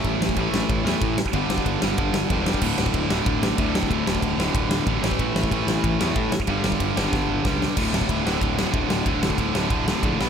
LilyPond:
<<
  \new Staff \with { instrumentName = "Distorted electric guitar" } { \clef bass \time 4/4 \key a \mixolydian \tempo 4 = 187 <a, e a>4 <a, e a>4. <a, e a>4 r8 | <g, d g>4. <g, d g>4. <g, d g>4 | <d, a, d>4. <d, a, d>4. <d, a, d>4 | <d, a, d>4. <d, a, d>4. <d, a, d>8 <a, e a>8~ |
<a, e a>4 <a, e a>4. <a, e a>4 r8 | <g, d g>4. <g, d g>4. <g, d g>4 | <d, a, d>8 <d, a, d>8 <d, a, d>8 <d, a, d>8 <d, a, d>8 <d, a, d>8 <d, a, d>8 <d, a, d>8 | <d, a, d>8 <d, a, d>8 <d, a, d>8 <d, a, d>8 <d, a, d>8 <d, a, d>8 <d, a, d>8 <b, fis b>8 | }
  \new Staff \with { instrumentName = "Overdriven electric guitar" } { \clef bass \time 4/4 \key a \mixolydian <a, e a>4 <a, e a>4. <a, e a>4 r8 | <g, d g>4. <g, d g>4. <g, d g>4 | <d, a, d>4. <d, a, d>4. <d, a, d>4 | <d, a, d>4. <d, a, d>4. <d, a, d>8 <a, e a>8~ |
<a, e a>4 <a, e a>4. <a, e a>4 r8 | <g, d g>4. <g, d g>4. <g, d g>4 | <d, a, d>8 <d, a, d>8 <d, a, d>8 <d, a, d>8 <d, a, d>8 <d, a, d>8 <d, a, d>8 <d, a, d>8 | <d, a, d>8 <d, a, d>8 <d, a, d>8 <d, a, d>8 <d, a, d>8 <d, a, d>8 <d, a, d>8 <b, fis b>8 | }
  \new Staff \with { instrumentName = "Picked electric bass" } { \clef bass \time 4/4 \key a \mixolydian a,,8 a,,8 a,,8 a,,8 a,,8 e,8 a,4 | g,,8 g,,8 g,,8 g,,8 g,,8 g,,8 e,,4 | d,,8 d,,8 d,,8 d,,8 d,,8 a,,8 d,4 | d,,8 d,,8 d,,8 d,,8 d,,8 d,,8 a,,8 a,,8 |
a,,8 a,,8 a,,8 a,,8 a,,8 e,8 a,4 | g,,8 g,,8 g,,8 g,,8 g,,8 g,,8 cis,4 | d,,4 d,,8 d,,8 d,,4 d,,8 d,,8 | d,,4 d,,8 d,,8 d,,4 bes,,8 b,,8 | }
  \new DrumStaff \with { instrumentName = "Drums" } \drummode { \time 4/4 <bd cymr>8 sn16 bd16 <bd cymr>8 sn8 <bd cymr>8 sn8 <bd cymr>8 sn16 bd16 | <bd cymr>8 sn16 bd16 <bd cymr>8 sn8 <bd cymr>8 sn8 <bd cymr>8 sn16 bd16 | <cymc bd>8 sn16 bd16 <bd cymr>8 sn8 <bd cymr>8 sn8 <bd cymr>8 sn16 bd16 | <bd cymr>8 sn16 bd16 <bd cymr>8 sn8 <bd cymr>8 sn8 <bd cymr>8 sn16 bd16 |
<bd cymr>8 sn16 bd16 <bd cymr>8 sn8 <bd cymr>8 sn8 <bd cymr>8 sn16 bd16 | <bd cymr>8 sn16 bd16 <bd cymr>8 sn8 <bd sn>4 <bd sn>8 sn8 | <cymc bd>8 sn16 bd16 <bd cymr>8 sn8 <bd cymr>8 sn8 <bd cymr>8 sn8 | <bd cymr>8 sn16 bd16 <bd cymr>8 sn8 <bd cymr>8 sn8 <bd cymr>8 sn8 | }
>>